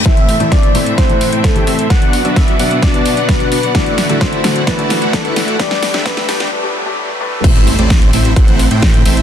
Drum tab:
CC |----------------|----------------|----------------|----------------|
HH |xxoxxxoxxxoxxxox|xxoxxxoxxxoxxxox|xxoxxxoxxxoxxxox|xxoxxxox--------|
SD |o---o---o---o---|o---o---o---o---|o-o-o-o-o-o-o-o-|oooooooo--------|
BD |o---o---o---o---|o---o---o---o---|o---o---o---o---|o---o-----------|

CC |x---------------|
HH |xxoxxxoxxxoxxxox|
SD |----o-------o---|
BD |o---o---o---o---|